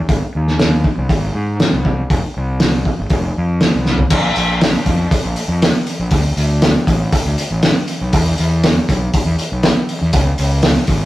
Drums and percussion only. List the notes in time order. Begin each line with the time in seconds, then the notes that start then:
0.09 kick, open hi-hat
0.47 snare
0.59 snare, open hi-hat
0.84 kick
1.09 kick, open hi-hat
1.60 snare, open hi-hat
1.85 kick
2.10 kick, open hi-hat
2.60 snare, open hi-hat
2.85 kick
3.10 kick, open hi-hat
3.61 snare, open hi-hat
3.86 snare
3.98 floor tom
4.10 kick, crash
4.36 open hi-hat
4.61 snare, open hi-hat
4.74 snare
4.86 kick, open hi-hat
5.11 kick, open hi-hat
5.36 open hi-hat
5.62 snare, open hi-hat
5.87 open hi-hat
6.11 kick, open hi-hat
6.37 open hi-hat
6.62 snare, open hi-hat
6.87 kick, open hi-hat
7.13 kick, open hi-hat
7.38 open hi-hat
7.63 snare, open hi-hat
7.88 open hi-hat
8.13 kick, open hi-hat
8.38 open hi-hat
8.64 snare, open hi-hat
8.89 kick, open hi-hat
9.14 kick, open hi-hat
9.39 open hi-hat
9.63 snare, open hi-hat
9.89 open hi-hat
10.13 kick, open hi-hat
10.38 open hi-hat
10.63 snare, open hi-hat
10.75 snare
10.87 kick, open hi-hat